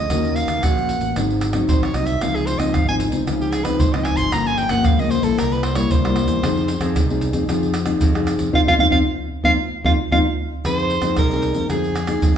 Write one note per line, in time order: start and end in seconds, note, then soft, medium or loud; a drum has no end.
0.00 0.37 D#5 medium
0.10 0.43 D#2 medium
0.10 0.60 D#3 medium
0.10 0.44 A#3 medium
0.10 0.44 C#4 medium
0.10 0.45 F#4 medium
0.10 pandeiro medium
0.10 tamborim medium
0.10 shaker medium
0.10 surdo medium
0.25 pandeiro soft
0.25 shaker soft
0.35 0.65 F5 medium
0.35 pandeiro medium
0.35 shaker medium
0.47 0.62 D#2 loud
0.47 pandeiro medium
0.47 tamborim medium
0.47 shaker medium
0.47 surdo soft
0.62 0.96 A#1 medium
0.62 1.13 A#2 medium
0.62 1.12 A#3 medium
0.62 1.12 C#4 medium
0.62 1.12 F#4 medium
0.62 1.16 F#5 medium
0.62 pandeiro medium
0.62 tamborim medium
0.62 shaker medium
0.62 surdo medium
0.77 pandeiro soft
0.77 shaker soft
0.89 pandeiro medium
0.89 shaker medium
1.00 1.12 A1 medium
1.00 pandeiro soft
1.00 shaker medium
1.00 surdo soft
1.16 1.61 G#1 medium
1.16 1.66 G#2 medium
1.16 1.51 F#3 medium
1.16 1.51 C4 medium
1.16 1.52 D#4 medium
1.16 pandeiro medium
1.16 tamborim medium
1.16 shaker medium
1.16 surdo medium
1.30 pandeiro soft
1.30 shaker soft
1.41 pandeiro medium
1.41 tamborim medium
1.41 shaker medium
1.53 1.90 F#3 medium
1.53 1.90 C4 medium
1.53 1.90 D#4 medium
1.53 pandeiro medium
1.53 tamborim medium
1.53 shaker medium
1.53 surdo soft
1.68 1.92 A#1 medium
1.68 2.19 D#3 medium
1.68 1.84 C5 medium
1.68 pandeiro medium
1.68 shaker medium
1.68 surdo loud
1.83 1.96 C#5 medium
1.83 pandeiro soft
1.83 tamborim medium
1.83 shaker soft
1.94 2.18 C2 medium
1.94 2.10 F#3 medium
1.94 2.10 C4 medium
1.94 2.11 D#4 medium
1.94 2.08 D#5 medium
1.94 pandeiro medium
1.94 tamborim medium
1.94 shaker medium
2.06 2.23 E5 medium
2.06 pandeiro medium
2.06 shaker medium
2.06 surdo soft
2.21 2.55 C#2 medium
2.21 2.72 C#3 soft
2.21 2.57 F3 medium
2.21 2.57 C4 medium
2.21 2.57 D#4 medium
2.21 2.37 F5 medium
2.21 pandeiro medium
2.21 tamborim medium
2.21 shaker medium
2.21 surdo medium
2.35 2.48 G#4 medium
2.35 pandeiro soft
2.35 shaker soft
2.46 2.60 C5 medium
2.46 pandeiro medium
2.46 shaker medium
2.58 2.75 C#2 loud
2.58 2.82 F3 medium
2.58 2.82 C4 medium
2.58 2.82 D#4 medium
2.58 2.75 D#5 medium
2.58 pandeiro medium
2.58 tamborim medium
2.58 shaker medium
2.58 surdo soft
2.74 3.07 G#1 medium
2.74 3.24 G#2 soft
2.74 2.87 F5 medium
2.74 pandeiro medium
2.74 tamborim medium
2.74 shaker medium
2.74 surdo medium
2.88 3.10 F3 medium
2.88 3.10 C4 medium
2.88 3.10 D#4 medium
2.88 2.96 G#5 medium
2.88 pandeiro soft
2.88 shaker soft
3.00 pandeiro medium
3.00 shaker medium
3.00 surdo soft
3.11 3.23 C#2 medium
3.11 3.22 F3 medium
3.11 3.22 C4 medium
3.11 3.22 D#4 medium
3.11 pandeiro medium
3.11 shaker medium
3.11 surdo soft
3.26 3.71 C#2 medium
3.26 3.77 C#3 medium
3.26 3.62 F3 medium
3.26 3.63 C4 medium
3.26 3.63 D#4 medium
3.26 pandeiro medium
3.26 tamborim medium
3.26 shaker medium
3.26 surdo medium
3.41 3.53 G4 medium
3.41 pandeiro soft
3.41 shaker soft
3.52 3.65 G#4 medium
3.52 pandeiro medium
3.52 tamborim medium
3.52 shaker medium
3.64 3.88 F3 medium
3.64 3.88 C4 medium
3.64 3.88 D#4 medium
3.64 3.81 B4 medium
3.64 pandeiro medium
3.64 tamborim medium
3.64 shaker medium
3.64 surdo soft
3.79 4.13 C#2 medium
3.79 4.30 G#2 medium
3.79 3.94 C5 medium
3.79 pandeiro medium
3.79 shaker medium
3.79 surdo loud
3.93 4.29 F3 medium
3.93 4.29 C4 medium
3.93 4.29 D#4 medium
3.93 4.06 D#5 medium
3.93 pandeiro soft
3.93 tamborim medium
3.93 shaker soft
4.04 4.18 G#5 medium
4.04 pandeiro medium
4.04 tamborim medium
4.17 4.29 G#1 medium
4.17 4.34 C6 loud
4.17 pandeiro medium
4.17 shaker medium
4.17 surdo soft
4.32 4.66 G1 medium
4.32 4.82 G2 medium
4.32 4.68 F3 medium
4.32 4.68 A#3 medium
4.32 4.68 C#4 medium
4.32 4.48 A#5 medium
4.32 pandeiro medium
4.32 tamborim medium
4.32 shaker medium
4.32 surdo medium
4.46 4.59 G#5 medium
4.46 pandeiro soft
4.46 shaker soft
4.58 4.72 G5 loud
4.58 pandeiro medium
4.69 4.86 G1 loud
4.69 4.93 F3 medium
4.69 4.93 A#3 medium
4.69 4.94 C#4 medium
4.69 4.87 F#5 medium
4.69 pandeiro medium
4.69 tamborim medium
4.69 shaker medium
4.69 surdo soft
4.84 5.19 C#2 medium
4.84 5.35 G2 medium
4.84 5.01 F5 medium
4.84 pandeiro medium
4.84 tamborim medium
4.84 shaker medium
4.84 surdo loud
4.99 5.21 F3 medium
4.99 5.21 A#3 medium
4.99 5.22 C#4 medium
4.99 5.12 D#5 medium
4.99 pandeiro soft
4.99 shaker soft
5.11 5.25 C5 medium
5.11 pandeiro medium
5.11 shaker medium
5.11 surdo soft
5.23 5.35 A#1 medium
5.23 5.72 G3 medium
5.23 5.72 A#3 medium
5.23 5.73 E4 medium
5.23 5.40 A4 medium
5.23 pandeiro soft
5.23 shaker medium
5.23 surdo soft
5.38 5.83 C2 medium
5.38 5.88 C3 medium
5.38 5.54 A#4 medium
5.38 pandeiro medium
5.38 tamborim medium
5.38 shaker medium
5.38 surdo medium
5.52 5.65 B4 medium
5.52 pandeiro soft
5.52 shaker soft
5.63 5.77 C5 medium
5.63 pandeiro medium
5.63 tamborim medium
5.75 5.98 G3 medium
5.75 5.99 A#3 medium
5.75 5.99 E4 medium
5.75 5.93 C#5 medium
5.75 pandeiro medium
5.75 tamborim medium
5.75 shaker medium
5.75 surdo soft
5.91 6.24 C2 loud
5.91 6.41 G2 medium
5.91 6.97 C5 medium
5.91 pandeiro medium
5.91 shaker medium
5.91 surdo loud
6.05 6.40 G3 medium
6.05 6.40 A#3 medium
6.05 6.40 E4 medium
6.05 pandeiro soft
6.05 tamborim medium
6.05 shaker soft
6.16 pandeiro medium
6.16 tamborim medium
6.28 6.40 E2 medium
6.28 pandeiro medium
6.28 shaker medium
6.28 surdo soft
6.43 6.77 F2 loud
6.43 6.93 F3 medium
6.43 6.68 C4 medium
6.43 6.68 D#4 medium
6.43 6.68 G#4 medium
6.43 pandeiro medium
6.43 tamborim medium
6.43 shaker medium
6.43 surdo medium
6.57 pandeiro soft
6.57 shaker soft
6.68 pandeiro medium
6.68 shaker medium
6.80 6.97 F2 loud
6.80 7.04 C4 medium
6.80 7.04 D#4 medium
6.80 7.04 G#4 medium
6.80 pandeiro medium
6.80 tamborim medium
6.80 shaker medium
6.80 surdo soft
6.95 7.29 C2 medium
6.95 7.46 C3 medium
6.95 pandeiro medium
6.95 tamborim medium
6.95 shaker medium
6.95 surdo medium
7.10 7.32 C4 medium
7.10 7.32 D#4 medium
7.10 7.32 G#4 medium
7.10 pandeiro soft
7.10 shaker soft
7.21 pandeiro medium
7.21 shaker medium
7.21 surdo soft
7.33 7.45 F2 medium
7.33 7.43 C4 medium
7.33 7.43 D#4 medium
7.33 7.44 G#4 medium
7.33 pandeiro medium
7.33 shaker medium
7.33 surdo soft
7.48 7.94 F2 medium
7.48 7.99 F3 medium
7.48 7.73 C4 medium
7.48 7.74 D#4 medium
7.48 7.74 G#4 medium
7.48 pandeiro medium
7.48 tamborim medium
7.48 shaker medium
7.48 surdo medium
7.63 pandeiro soft
7.63 shaker soft
7.74 pandeiro medium
7.74 tamborim medium
7.74 shaker medium
7.85 8.09 C4 medium
7.85 8.09 D#4 medium
7.85 8.10 G#4 medium
7.85 pandeiro medium
7.85 tamborim medium
7.85 shaker medium
7.85 surdo soft
8.01 8.35 F2 loud
8.01 8.52 C3 medium
8.01 pandeiro medium
8.01 shaker medium
8.01 surdo loud
8.15 8.51 C4 medium
8.15 8.50 D#4 medium
8.15 8.51 G#4 medium
8.15 pandeiro soft
8.15 tamborim medium
8.15 shaker soft
8.27 pandeiro medium
8.27 tamborim medium
8.27 shaker medium
8.38 8.51 F2 medium
8.38 pandeiro medium
8.38 shaker medium
8.38 surdo soft
8.53 8.64 F2 medium
8.53 8.62 C4 medium
8.53 8.62 D#4 medium
8.53 8.62 F4 loud
8.53 8.61 F5 medium
8.53 surdo loud
8.67 8.77 F2 medium
8.67 8.76 C4 loud
8.67 8.76 D#4 loud
8.67 8.76 F4 loud
8.67 8.74 F5 loud
8.67 surdo loud
8.78 8.89 F2 medium
8.78 8.88 C4 medium
8.78 8.88 D#4 medium
8.78 8.88 F4 medium
8.78 8.86 F5 medium
8.78 surdo medium
8.90 9.02 F2 loud
8.90 9.00 C4 loud
8.90 9.00 D#4 loud
8.90 9.00 F4 medium
8.90 8.99 F5 medium
8.90 surdo medium
9.44 9.55 F2 medium
9.44 9.53 C4 medium
9.44 9.53 D#4 loud
9.44 9.53 F4 loud
9.44 9.52 F5 loud
9.44 surdo medium
9.84 9.95 F2 loud
9.84 9.94 C4 loud
9.84 9.94 D#4 loud
9.84 9.94 F4 loud
9.84 9.92 F5 medium
9.84 surdo loud
10.12 10.22 F2 medium
10.12 10.21 C4 medium
10.12 10.21 D#4 loud
10.12 10.21 F4 loud
10.12 10.19 F5 medium
10.12 surdo medium
10.65 10.98 F2 medium
10.65 11.15 F3 soft
10.65 11.01 C4 soft
10.65 11.01 D#4 soft
10.65 11.01 G#4 medium
10.65 11.15 C5 loud
10.65 pandeiro medium
10.65 tamborim medium
10.65 shaker medium
10.65 surdo medium
10.79 pandeiro soft
10.79 shaker soft
10.90 pandeiro medium
11.02 11.19 F2 loud
11.02 11.26 C4 medium
11.02 11.26 D#4 medium
11.02 11.26 G#4 medium
11.02 pandeiro medium
11.02 tamborim medium
11.02 shaker medium
11.02 surdo soft
11.16 11.51 C2 medium
11.16 11.68 C3 soft
11.16 11.67 A#4 medium
11.16 pandeiro medium
11.16 tamborim medium
11.16 shaker medium
11.16 surdo medium
11.31 11.54 C4 medium
11.31 11.54 D#4 medium
11.31 11.54 G#4 medium
11.31 pandeiro soft
11.31 shaker soft
11.42 pandeiro medium
11.42 surdo soft
11.54 11.67 F2 medium
11.54 11.65 C4 medium
11.54 11.65 D#4 medium
11.54 11.65 G#4 medium
11.54 pandeiro soft
11.54 shaker medium
11.54 surdo soft
11.69 12.15 F2 medium
11.69 12.21 F3 medium
11.69 11.96 C4 medium
11.69 11.96 D#4 medium
11.69 12.38 G#4 medium
11.69 11.96 G#4 medium
11.69 pandeiro medium
11.69 tamborim medium
11.69 shaker medium
11.69 surdo medium
11.84 pandeiro soft
11.84 shaker soft
11.95 pandeiro medium
11.95 tamborim medium
11.95 shaker medium
12.07 12.31 C4 medium
12.07 12.31 D#4 medium
12.07 12.31 G#4 medium
12.07 pandeiro medium
12.07 tamborim medium
12.07 shaker medium
12.07 surdo soft
12.22 12.38 F2 medium
12.22 12.38 C3 soft
12.22 pandeiro medium
12.22 shaker medium
12.22 surdo loud